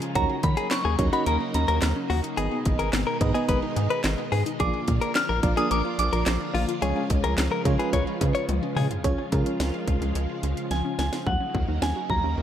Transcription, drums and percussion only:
0.02 closed hi-hat medium
0.15 kick loud
0.15 closed hi-hat medium
0.43 kick loud
0.43 closed hi-hat medium
0.57 closed hi-hat medium
0.71 snare loud
0.71 clap loud
0.71 closed hi-hat medium
0.99 kick loud
0.99 closed hi-hat medium
1.13 closed hi-hat medium
1.26 closed hi-hat medium
1.54 closed hi-hat medium
1.68 closed hi-hat soft
1.82 snare loud
1.82 clap medium
1.82 closed hi-hat medium
2.10 open hi-hat medium
2.24 closed hi-hat medium
2.38 closed hi-hat medium
2.65 kick loud
2.65 closed hi-hat medium
2.79 closed hi-hat medium
2.93 snare loud
2.93 clap loud
2.93 closed hi-hat medium
3.21 kick loud
3.21 closed hi-hat medium
3.35 closed hi-hat soft
3.49 kick medium
3.49 closed hi-hat medium
3.77 closed hi-hat medium
3.90 closed hi-hat soft
4.04 snare loud
4.04 clap medium
4.04 closed hi-hat medium
4.32 open hi-hat medium
4.46 closed hi-hat medium
4.60 kick loud
4.60 closed hi-hat medium
4.88 kick loud
4.88 closed hi-hat medium
5.02 closed hi-hat medium
5.15 snare loud
5.15 clap loud
5.15 closed hi-hat medium
5.43 kick loud
5.43 closed hi-hat medium
5.57 closed hi-hat medium
5.71 closed hi-hat medium
5.99 closed hi-hat medium
6.13 closed hi-hat soft
6.26 snare loud
6.26 clap medium
6.26 closed hi-hat medium
6.55 open hi-hat medium
6.69 closed hi-hat medium
6.82 closed hi-hat medium
7.10 kick loud
7.10 closed hi-hat medium
7.24 closed hi-hat medium
7.38 snare loud
7.38 clap loud
7.38 closed hi-hat medium
7.65 kick loud
7.65 closed hi-hat medium
7.80 closed hi-hat soft
7.93 kick medium
7.93 closed hi-hat medium
8.21 kick medium
8.21 closed hi-hat medium
8.35 closed hi-hat soft
8.49 closed hi-hat medium
8.49 high tom medium
8.77 mid tom medium
8.77 open hi-hat medium
8.90 closed hi-hat medium
8.90 floor tom loud
9.04 kick loud
9.04 closed hi-hat medium
9.32 kick loud
9.32 closed hi-hat medium
9.46 closed hi-hat medium
9.60 snare loud
9.60 closed hi-hat medium
9.88 kick medium
9.88 closed hi-hat medium
10.02 closed hi-hat soft
10.15 closed hi-hat medium
10.43 closed hi-hat medium
10.57 closed hi-hat soft
10.71 snare medium
10.71 closed hi-hat medium
10.99 snare medium
10.99 closed hi-hat medium
11.13 snare medium
11.13 closed hi-hat medium
11.27 kick loud
11.55 kick loud
11.82 snare loud
12.10 kick loud

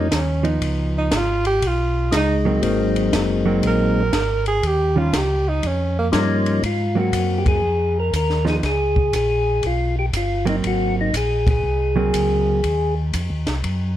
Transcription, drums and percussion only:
0.11 kick soft
0.11 snare medium
0.11 hi-hat pedal medium
0.11 ride medium
0.45 ride soft
0.61 kick soft
0.61 ride medium
1.11 kick soft
1.11 snare medium
1.11 hi-hat pedal medium
1.11 ride medium
1.45 ride soft
1.62 kick soft
1.62 ride medium
2.12 kick soft
2.12 snare medium
2.12 hi-hat pedal medium
2.12 ride medium
2.63 kick soft
2.63 ride medium
2.96 ride medium
3.13 kick soft
3.13 snare medium
3.13 hi-hat pedal medium
3.13 ride medium
3.63 kick soft
3.63 ride medium
4.13 kick soft
4.13 snare medium
4.13 hi-hat pedal medium
4.13 ride medium
4.46 ride soft
4.63 kick soft
4.63 ride medium
5.13 kick soft
5.13 snare medium
5.13 hi-hat pedal medium
5.13 ride medium
5.63 kick soft
5.63 ride medium
6.13 kick soft
6.13 snare medium
6.13 hi-hat pedal medium
6.13 ride medium
6.46 ride soft
6.63 kick soft
6.63 ride medium
7.13 kick soft
7.13 hi-hat pedal medium
7.13 ride medium
7.46 kick medium
7.46 ride medium
8.13 kick soft
8.13 hi-hat pedal medium
8.13 ride medium
8.30 snare soft
8.46 snare soft
8.63 kick soft
8.63 snare soft
8.63 ride medium
8.96 kick medium
9.13 kick soft
9.13 hi-hat pedal medium
9.13 ride medium
9.63 kick soft
9.63 ride soft
10.13 kick soft
10.13 hi-hat pedal medium
10.13 ride medium
10.47 ride soft
10.64 kick soft
10.64 ride medium
11.14 kick soft
11.14 hi-hat pedal medium
11.14 ride medium
11.47 kick medium
11.47 ride medium
12.14 kick soft
12.14 hi-hat pedal medium
12.14 ride medium
12.64 kick soft
12.64 ride medium
13.13 kick soft
13.13 hi-hat pedal medium
13.13 ride medium
13.47 snare soft
13.47 ride soft
13.64 kick soft
13.64 ride medium

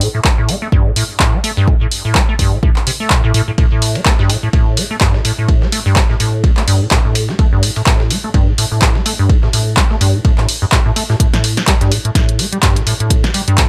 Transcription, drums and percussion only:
0.01 open hi-hat loud
0.24 kick loud
0.24 clap loud
0.49 open hi-hat medium
0.72 kick loud
0.96 open hi-hat loud
1.20 kick loud
1.20 clap loud
1.44 open hi-hat medium
1.68 kick loud
1.92 open hi-hat loud
2.15 kick loud
2.15 clap loud
2.39 kick medium
2.39 open hi-hat medium
2.63 kick loud
2.76 clap soft
2.87 open hi-hat loud
3.10 kick loud
3.10 clap loud
3.34 open hi-hat medium
3.58 kick loud
3.58 ride medium
3.82 open hi-hat loud
3.82 ride medium
3.95 ride soft
4.05 kick loud
4.05 snare loud
4.05 clap loud
4.05 ride medium
4.19 snare medium
4.29 open hi-hat medium
4.29 ride medium
4.53 kick loud
4.53 ride medium
4.77 open hi-hat loud
4.77 ride medium
5.01 kick loud
5.01 snare loud
5.01 clap loud
5.01 ride medium
5.14 snare soft
5.25 open hi-hat medium
5.25 ride medium
5.49 kick loud
5.49 ride medium
5.62 snare soft
5.72 open hi-hat loud
5.72 ride medium
5.96 kick loud
5.96 snare loud
5.96 clap loud
5.96 ride medium
6.10 snare soft
6.20 open hi-hat medium
6.20 ride medium
6.44 kick loud
6.44 ride medium
6.57 snare soft
6.57 clap soft
6.68 open hi-hat medium
6.68 open hi-hat loud
6.91 kick loud
6.91 snare loud
6.91 clap loud
6.91 ride medium
7.15 open hi-hat loud
7.15 ride medium
7.29 snare soft
7.39 kick loud
7.39 ride medium
7.63 open hi-hat loud
7.63 ride medium
7.76 ride soft
7.86 kick loud
7.86 snare loud
7.86 clap loud
7.86 ride medium
8.00 snare medium
8.10 open hi-hat medium
8.10 ride medium
8.34 kick loud
8.34 ride medium
8.58 open hi-hat loud
8.58 ride medium
8.82 kick loud
8.82 snare loud
8.82 clap loud
8.82 ride medium
8.95 snare soft
9.06 open hi-hat loud
9.06 ride medium
9.30 kick loud
9.30 ride medium
9.43 snare soft
9.53 open hi-hat loud
9.53 ride medium
9.77 kick loud
9.77 snare loud
9.77 clap loud
9.77 ride medium
9.91 snare soft
10.01 open hi-hat medium
10.01 ride medium
10.25 kick loud
10.25 ride medium
10.38 snare soft
10.38 clap soft
10.49 open hi-hat medium
10.49 open hi-hat loud
10.72 kick loud
10.72 snare loud
10.72 clap loud
10.72 ride medium
10.96 open hi-hat loud
10.96 ride medium
11.10 snare soft
11.20 kick loud
11.20 closed hi-hat medium
11.20 ride medium
11.34 snare medium
11.34 closed hi-hat soft
11.44 open hi-hat loud
11.44 ride medium
11.57 snare medium
11.57 closed hi-hat soft
11.57 ride soft
11.67 kick loud
11.67 snare loud
11.67 clap loud
11.67 closed hi-hat medium
11.67 ride medium
11.81 snare medium
11.81 closed hi-hat soft
11.91 open hi-hat medium
11.91 ride medium
12.05 closed hi-hat soft
12.15 kick loud
12.15 snare medium
12.15 closed hi-hat medium
12.15 ride medium
12.29 closed hi-hat soft
12.39 open hi-hat loud
12.39 ride medium
12.53 closed hi-hat soft
12.63 kick loud
12.63 snare loud
12.63 clap loud
12.63 closed hi-hat medium
12.63 ride loud
12.76 snare soft
12.76 closed hi-hat soft
12.87 open hi-hat medium
12.87 ride medium
13.00 closed hi-hat soft
13.10 kick loud
13.10 closed hi-hat medium
13.10 ride medium
13.24 snare soft
13.24 snare medium
13.24 closed hi-hat soft
13.34 open hi-hat loud
13.34 ride medium
13.48 closed hi-hat soft
13.58 kick loud
13.58 snare loud
13.58 clap loud
13.58 closed hi-hat medium
13.58 ride medium

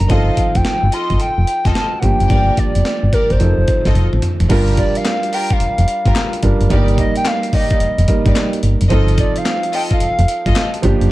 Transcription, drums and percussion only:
0.10 kick loud
0.10 closed hi-hat medium
0.37 kick medium
0.37 closed hi-hat medium
0.55 kick medium
0.55 closed hi-hat medium
0.65 snare loud
0.65 closed hi-hat medium
0.92 closed hi-hat medium
1.10 kick medium
1.10 closed hi-hat soft
1.20 closed hi-hat medium
1.47 closed hi-hat medium
1.65 kick medium
1.65 snare medium
1.65 closed hi-hat soft
1.75 snare loud
1.75 closed hi-hat medium
2.03 kick medium
2.03 closed hi-hat medium
2.20 closed hi-hat soft
2.30 kick loud
2.30 closed hi-hat medium
2.57 kick medium
2.57 closed hi-hat medium
2.75 closed hi-hat medium
2.85 snare loud
2.85 closed hi-hat medium
3.13 kick medium
3.13 closed hi-hat medium
3.30 kick medium
3.30 closed hi-hat soft
3.40 closed hi-hat medium
3.68 kick medium
3.68 closed hi-hat medium
3.85 kick medium
3.85 snare medium
3.85 closed hi-hat medium
3.95 closed hi-hat medium
3.95 high tom medium
4.13 mid tom medium
4.22 closed hi-hat medium
4.22 mid tom medium
4.40 closed hi-hat medium
4.40 floor tom medium
4.50 kick loud
4.50 closed hi-hat medium
4.50 crash medium
4.68 closed hi-hat soft
4.77 kick medium
4.77 closed hi-hat medium
4.95 closed hi-hat medium
5.05 snare loud
5.05 clap medium
5.05 closed hi-hat medium
5.23 closed hi-hat soft
5.33 open hi-hat medium
5.50 kick medium
5.50 closed hi-hat soft
5.60 closed hi-hat medium
5.78 closed hi-hat soft
5.88 closed hi-hat medium
6.06 kick loud
6.06 closed hi-hat medium
6.15 snare loud
6.15 clap medium
6.15 closed hi-hat medium
6.33 closed hi-hat medium
6.43 kick medium
6.43 closed hi-hat medium
6.61 closed hi-hat soft
6.70 kick loud
6.70 closed hi-hat medium
6.88 closed hi-hat soft
6.98 kick loud
6.98 closed hi-hat medium
7.16 closed hi-hat medium
7.25 snare loud
7.25 clap medium
7.25 closed hi-hat medium
7.43 closed hi-hat soft
7.53 kick loud
7.53 open hi-hat medium
7.70 kick medium
7.70 closed hi-hat soft
7.80 closed hi-hat medium
7.98 closed hi-hat soft
8.08 kick loud
8.08 closed hi-hat medium
8.26 kick medium
8.26 closed hi-hat medium
8.36 snare loud
8.36 clap medium
8.36 closed hi-hat medium
8.53 closed hi-hat soft
8.63 closed hi-hat medium
8.81 closed hi-hat medium
8.90 kick loud
8.90 closed hi-hat medium
9.08 closed hi-hat soft
9.18 kick loud
9.18 closed hi-hat medium
9.36 closed hi-hat medium
9.45 snare loud
9.45 clap medium
9.45 closed hi-hat medium
9.63 closed hi-hat soft
9.73 open hi-hat medium
9.91 kick medium
9.91 closed hi-hat soft
10.00 closed hi-hat medium
10.19 closed hi-hat medium
10.28 closed hi-hat medium
10.46 kick medium
10.46 closed hi-hat medium
10.56 snare loud
10.56 clap medium
10.56 closed hi-hat medium
10.74 closed hi-hat medium
10.83 kick loud
10.83 closed hi-hat medium
11.01 closed hi-hat medium

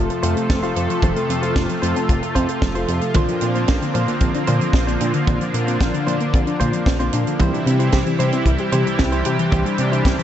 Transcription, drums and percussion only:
0.10 closed hi-hat medium
0.23 closed hi-hat loud
0.37 closed hi-hat medium
0.50 kick loud
0.50 snare loud
0.50 closed hi-hat medium
0.63 closed hi-hat medium
0.76 closed hi-hat medium
0.90 closed hi-hat medium
1.02 kick loud
1.02 closed hi-hat medium
1.02 high tom medium
1.16 closed hi-hat medium
1.30 closed hi-hat medium
1.43 closed hi-hat medium
1.56 kick loud
1.56 snare loud
1.56 closed hi-hat medium
1.69 closed hi-hat medium
1.83 closed hi-hat loud
1.96 closed hi-hat medium
2.09 kick loud
2.09 closed hi-hat medium
2.23 closed hi-hat medium
2.36 kick medium
2.36 closed hi-hat loud
2.49 closed hi-hat medium
2.62 kick loud
2.62 snare loud
2.62 closed hi-hat medium
2.75 closed hi-hat medium
2.88 closed hi-hat medium
3.01 closed hi-hat medium
3.15 kick loud
3.15 closed hi-hat medium
3.15 high tom medium
3.28 closed hi-hat medium
3.41 closed hi-hat medium
3.55 closed hi-hat soft
3.68 kick loud
3.68 snare loud
3.68 closed hi-hat medium
3.82 closed hi-hat medium
3.95 closed hi-hat medium
4.08 closed hi-hat soft
4.20 kick loud
4.20 closed hi-hat medium
4.34 closed hi-hat medium
4.47 closed hi-hat medium
4.61 closed hi-hat medium
4.73 kick loud
4.73 snare loud
4.73 closed hi-hat medium
4.88 closed hi-hat medium
5.01 closed hi-hat medium
5.14 closed hi-hat medium
5.27 kick loud
5.27 closed hi-hat medium
5.27 high tom medium
5.41 closed hi-hat medium
5.54 closed hi-hat loud
5.68 closed hi-hat medium
5.81 kick loud
5.81 snare loud
5.81 closed hi-hat medium
5.94 closed hi-hat medium
6.08 closed hi-hat medium
6.20 closed hi-hat soft
6.34 kick loud
6.34 closed hi-hat medium
6.47 closed hi-hat medium
6.60 kick medium
6.60 closed hi-hat medium
6.73 closed hi-hat medium
6.86 kick loud
6.86 snare loud
6.86 closed hi-hat medium
7.00 closed hi-hat soft
7.13 closed hi-hat loud
7.27 closed hi-hat medium
7.40 kick loud
7.40 closed hi-hat medium
7.40 high tom medium
7.54 closed hi-hat medium
7.67 closed hi-hat medium
7.80 closed hi-hat medium
7.92 kick loud
7.92 snare loud
7.92 closed hi-hat medium
8.07 closed hi-hat soft
8.20 closed hi-hat medium
8.33 closed hi-hat medium
8.46 kick loud
8.46 closed hi-hat medium
8.58 closed hi-hat soft
8.72 closed hi-hat loud
8.87 closed hi-hat soft
8.99 kick loud
8.99 snare loud
8.99 closed hi-hat medium
9.12 closed hi-hat medium
9.25 closed hi-hat loud
9.39 closed hi-hat medium
9.52 kick loud
9.52 closed hi-hat medium
9.52 high tom medium
9.66 closed hi-hat medium
9.78 closed hi-hat loud
9.93 closed hi-hat medium
10.05 kick loud
10.05 snare loud
10.05 closed hi-hat medium
10.19 closed hi-hat medium

